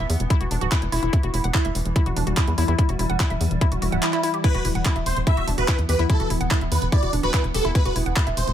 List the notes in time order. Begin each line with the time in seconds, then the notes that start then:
Already playing: E3 B3
0.10 E2, open hi-hat
0.20 E1, closed hi-hat
0.30 E4, kick, closed hi-hat
0.41 E1 F#4, closed hi-hat
0.51 E1 D4, open hi-hat
0.61 D1 F#4, closed hi-hat
0.72 E4, kick, clap, closed hi-hat
0.82 E1, closed hi-hat
0.92 E1 E4, open hi-hat
1.03 E1 E4, closed hi-hat
1.13 G3 E4, kick, closed hi-hat
1.23 E1 F#4, closed hi-hat
1.34 E1 E4, open hi-hat
1.44 E1 F#5, closed hi-hat
1.54 E4, kick, clap, closed hi-hat
1.65 E1 E5, closed hi-hat
1.75 E1, open hi-hat
1.85 E1, closed hi-hat
1.96 E4, kick, closed hi-hat
2.06 E1 F#4, closed hi-hat
2.16 E1 D4, open hi-hat
2.27 E1 F#4, closed hi-hat
2.37 E4, kick, clap, closed hi-hat
2.48 E2, closed hi-hat
2.58 E2 E4, open hi-hat
2.68 E2 E4, closed hi-hat
2.79 E4, kick, closed hi-hat
2.89 E1 F#4, closed hi-hat
2.99 E1 E4, open hi-hat
3.10 E1 F#5, closed hi-hat
3.20 E4, kick, clap, closed hi-hat
3.30 E1 E5, closed hi-hat
3.41 E2, open hi-hat
3.51 E1, closed hi-hat
3.61 E4, kick, closed hi-hat, swell
3.72 E1 F#4, closed hi-hat
3.82 E1 F#4, open hi-hat
3.92 D1 F#5, closed hi-hat
4.03 E4, clap, closed hi-hat
4.13 E4, clap, closed hi-hat
4.23 E4, open hi-hat
4.34 G4, closed hi-hat
4.44 E3 B3 E4 B4, kick, closed hi-hat, crash
4.54 E1 F#4, closed hi-hat
4.65 E1 E4, open hi-hat
4.75 E1 F#5, closed hi-hat
4.85 E4, kick, clap, closed hi-hat
4.96 E1 E5, closed hi-hat
5.06 E1 C5, open hi-hat
5.17 E1, closed hi-hat
5.27 E4 E5, kick, closed hi-hat
5.37 E1 F#4, closed hi-hat
5.48 E1 D4, open hi-hat
5.58 E1 F#4 B4, closed hi-hat
5.68 E4, kick, clap, closed hi-hat
5.79 E2, closed hi-hat
5.89 E2 G4 B4, open hi-hat
5.99 E2 E4, closed hi-hat
6.10 E4 A4, kick, closed hi-hat
6.20 E1 F#4, closed hi-hat
6.30 E1 E4, open hi-hat
6.41 E1 F#5, closed hi-hat
6.51 E4, kick, clap, closed hi-hat
6.61 E1 E5, closed hi-hat
6.72 E2 B4, open hi-hat
6.82 E1, closed hi-hat
6.92 E4 D5, kick, closed hi-hat
7.03 E1 F#4, closed hi-hat
7.13 E1 D4, open hi-hat
7.23 D1 F#4 B4, closed hi-hat
7.34 E4, kick, clap, closed hi-hat
7.44 E1, closed hi-hat
7.54 E1 G4 A4, open hi-hat
7.65 E1 E4, closed hi-hat
7.75 E4 B4, kick, closed hi-hat
7.85 E1 F#4, closed hi-hat
7.96 E1 E4, open hi-hat
8.06 E1 F#5, closed hi-hat
8.16 E4, kick, clap, closed hi-hat
8.27 E1 E5, closed hi-hat
8.37 E1 C5, open hi-hat
8.47 E1, closed hi-hat